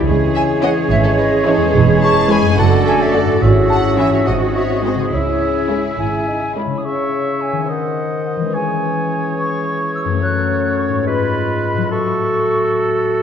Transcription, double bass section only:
0, 0, Header, 1, 2, 480
1, 0, Start_track
1, 0, Key_signature, 4, "minor"
1, 0, Tempo, 557621
1, 65, Time_signature, 6, 3, 24, 8
1, 3425, Tempo, 572519
1, 6305, Tempo, 561272
1, 11275, End_track
2, 0, Start_track
2, 0, Title_t, "Double bass section"
2, 0, Program_c, 0, 48
2, 61, Note_on_c, 0, 37, 74
2, 638, Note_off_c, 0, 37, 0
2, 781, Note_on_c, 0, 32, 77
2, 1358, Note_off_c, 0, 32, 0
2, 1510, Note_on_c, 0, 28, 77
2, 2082, Note_off_c, 0, 28, 0
2, 2225, Note_on_c, 0, 30, 69
2, 2800, Note_off_c, 0, 30, 0
2, 2946, Note_on_c, 0, 32, 74
2, 3525, Note_off_c, 0, 32, 0
2, 3669, Note_on_c, 0, 32, 54
2, 4246, Note_off_c, 0, 32, 0
2, 4389, Note_on_c, 0, 37, 53
2, 4967, Note_off_c, 0, 37, 0
2, 5114, Note_on_c, 0, 32, 43
2, 5692, Note_off_c, 0, 32, 0
2, 11275, End_track
0, 0, End_of_file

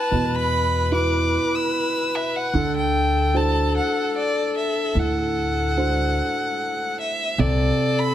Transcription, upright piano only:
0, 0, Header, 1, 2, 480
1, 0, Start_track
1, 0, Tempo, 806452
1, 71, Time_signature, 3, 2, 24, 8
1, 4848, End_track
2, 0, Start_track
2, 0, Title_t, "Upright piano"
2, 0, Program_c, 0, 0
2, 0, Control_c, 0, 64, 127
2, 0, Note_on_c, 0, 64, 44
2, 0, Note_on_c, 0, 66, 42
2, 0, Note_on_c, 0, 71, 51
2, 66, Note_on_c, 0, 47, 62
2, 526, Note_off_c, 0, 64, 0
2, 527, Note_off_c, 0, 66, 0
2, 528, Note_off_c, 0, 71, 0
2, 546, Note_on_c, 0, 64, 45
2, 546, Note_on_c, 0, 66, 39
2, 550, Note_on_c, 0, 71, 50
2, 1484, Note_off_c, 0, 66, 0
2, 1485, Note_off_c, 0, 47, 0
2, 1485, Note_off_c, 0, 64, 0
2, 1487, Note_off_c, 0, 71, 0
2, 1516, Note_on_c, 0, 50, 63
2, 1519, Control_c, 0, 64, 0
2, 1615, Control_c, 0, 64, 127
2, 1988, Note_on_c, 0, 62, 49
2, 1990, Note_on_c, 0, 66, 42
2, 1993, Note_on_c, 0, 72, 53
2, 2929, Note_off_c, 0, 50, 0
2, 2948, Note_on_c, 0, 45, 70
2, 3405, Note_off_c, 0, 62, 0
2, 3406, Note_off_c, 0, 66, 0
2, 3408, Note_off_c, 0, 72, 0
2, 3435, Note_on_c, 0, 62, 48
2, 3438, Note_on_c, 0, 66, 44
2, 3438, Note_on_c, 0, 72, 52
2, 4367, Note_off_c, 0, 45, 0
2, 4370, Note_off_c, 0, 62, 0
2, 4372, Note_off_c, 0, 66, 0
2, 4372, Note_off_c, 0, 72, 0
2, 4398, Note_on_c, 0, 48, 71
2, 4400, Control_c, 0, 64, 0
2, 4485, Control_c, 0, 64, 127
2, 4848, Note_off_c, 0, 48, 0
2, 4848, End_track
0, 0, End_of_file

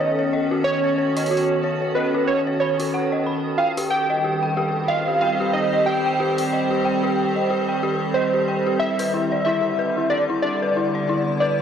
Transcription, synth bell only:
0, 0, Header, 1, 2, 480
1, 0, Start_track
1, 0, Tempo, 652174
1, 723, Time_signature, 4, 2, 24, 8
1, 8552, End_track
2, 0, Start_track
2, 0, Title_t, "Synth bell"
2, 0, Program_c, 0, 98
2, 3, Note_on_c, 0, 73, 72
2, 129, Note_off_c, 0, 73, 0
2, 138, Note_on_c, 0, 73, 73
2, 208, Note_off_c, 0, 73, 0
2, 243, Note_on_c, 0, 75, 79
2, 332, Note_off_c, 0, 75, 0
2, 378, Note_on_c, 0, 66, 97
2, 448, Note_off_c, 0, 66, 0
2, 618, Note_on_c, 0, 73, 71
2, 715, Note_off_c, 0, 73, 0
2, 724, Note_on_c, 0, 73, 76
2, 813, Note_off_c, 0, 73, 0
2, 858, Note_on_c, 0, 75, 72
2, 928, Note_off_c, 0, 75, 0
2, 963, Note_on_c, 0, 66, 95
2, 1052, Note_off_c, 0, 66, 0
2, 1204, Note_on_c, 0, 73, 77
2, 1329, Note_off_c, 0, 73, 0
2, 1338, Note_on_c, 0, 73, 72
2, 1408, Note_off_c, 0, 73, 0
2, 1443, Note_on_c, 0, 75, 72
2, 1532, Note_off_c, 0, 75, 0
2, 1578, Note_on_c, 0, 66, 94
2, 1648, Note_off_c, 0, 66, 0
2, 1818, Note_on_c, 0, 73, 70
2, 1918, Note_off_c, 0, 73, 0
2, 1923, Note_on_c, 0, 83, 71
2, 1977, Note_off_c, 0, 83, 0
2, 2057, Note_on_c, 0, 66, 72
2, 2127, Note_off_c, 0, 66, 0
2, 2163, Note_on_c, 0, 78, 79
2, 2252, Note_off_c, 0, 78, 0
2, 2298, Note_on_c, 0, 75, 72
2, 2368, Note_off_c, 0, 75, 0
2, 2403, Note_on_c, 0, 83, 69
2, 2531, Note_off_c, 0, 83, 0
2, 2643, Note_on_c, 0, 79, 79
2, 2732, Note_off_c, 0, 79, 0
2, 2777, Note_on_c, 0, 67, 94
2, 2847, Note_off_c, 0, 67, 0
2, 3017, Note_on_c, 0, 75, 73
2, 3118, Note_off_c, 0, 75, 0
2, 3123, Note_on_c, 0, 67, 78
2, 3212, Note_off_c, 0, 67, 0
2, 3257, Note_on_c, 0, 79, 75
2, 3328, Note_off_c, 0, 79, 0
2, 3363, Note_on_c, 0, 67, 95
2, 3452, Note_off_c, 0, 67, 0
2, 3603, Note_on_c, 0, 75, 78
2, 3731, Note_off_c, 0, 75, 0
2, 3737, Note_on_c, 0, 67, 71
2, 3808, Note_off_c, 0, 67, 0
2, 3843, Note_on_c, 0, 79, 72
2, 3932, Note_off_c, 0, 79, 0
2, 3977, Note_on_c, 0, 67, 96
2, 4047, Note_off_c, 0, 67, 0
2, 4217, Note_on_c, 0, 75, 72
2, 4318, Note_off_c, 0, 75, 0
2, 4323, Note_on_c, 0, 67, 72
2, 4412, Note_off_c, 0, 67, 0
2, 4457, Note_on_c, 0, 79, 71
2, 4527, Note_off_c, 0, 79, 0
2, 4563, Note_on_c, 0, 67, 97
2, 4652, Note_off_c, 0, 67, 0
2, 4803, Note_on_c, 0, 75, 71
2, 4931, Note_off_c, 0, 75, 0
2, 4937, Note_on_c, 0, 67, 73
2, 5007, Note_off_c, 0, 67, 0
2, 5043, Note_on_c, 0, 79, 81
2, 5132, Note_off_c, 0, 79, 0
2, 5177, Note_on_c, 0, 67, 98
2, 5247, Note_off_c, 0, 67, 0
2, 5417, Note_on_c, 0, 75, 70
2, 5518, Note_off_c, 0, 75, 0
2, 5523, Note_on_c, 0, 67, 81
2, 5612, Note_off_c, 0, 67, 0
2, 5657, Note_on_c, 0, 79, 73
2, 5727, Note_off_c, 0, 79, 0
2, 5763, Note_on_c, 0, 67, 97
2, 5852, Note_off_c, 0, 67, 0
2, 6003, Note_on_c, 0, 75, 81
2, 6131, Note_off_c, 0, 75, 0
2, 6138, Note_on_c, 0, 67, 73
2, 6208, Note_off_c, 0, 67, 0
2, 6243, Note_on_c, 0, 79, 69
2, 6332, Note_off_c, 0, 79, 0
2, 6378, Note_on_c, 0, 67, 97
2, 6448, Note_off_c, 0, 67, 0
2, 6618, Note_on_c, 0, 71, 74
2, 6718, Note_off_c, 0, 71, 0
2, 6724, Note_on_c, 0, 64, 73
2, 6812, Note_off_c, 0, 64, 0
2, 6858, Note_on_c, 0, 74, 74
2, 6928, Note_off_c, 0, 74, 0
2, 6964, Note_on_c, 0, 64, 98
2, 7052, Note_off_c, 0, 64, 0
2, 7204, Note_on_c, 0, 71, 76
2, 7331, Note_off_c, 0, 71, 0
2, 7338, Note_on_c, 0, 64, 72
2, 7408, Note_off_c, 0, 64, 0
2, 7444, Note_on_c, 0, 74, 78
2, 7533, Note_off_c, 0, 74, 0
2, 7578, Note_on_c, 0, 64, 94
2, 7648, Note_off_c, 0, 64, 0
2, 7818, Note_on_c, 0, 71, 73
2, 7918, Note_off_c, 0, 71, 0
2, 7924, Note_on_c, 0, 64, 81
2, 8013, Note_off_c, 0, 64, 0
2, 8058, Note_on_c, 0, 74, 73
2, 8128, Note_off_c, 0, 74, 0
2, 8164, Note_on_c, 0, 64, 94
2, 8253, Note_off_c, 0, 64, 0
2, 8403, Note_on_c, 0, 71, 80
2, 8531, Note_off_c, 0, 71, 0
2, 8552, End_track
0, 0, End_of_file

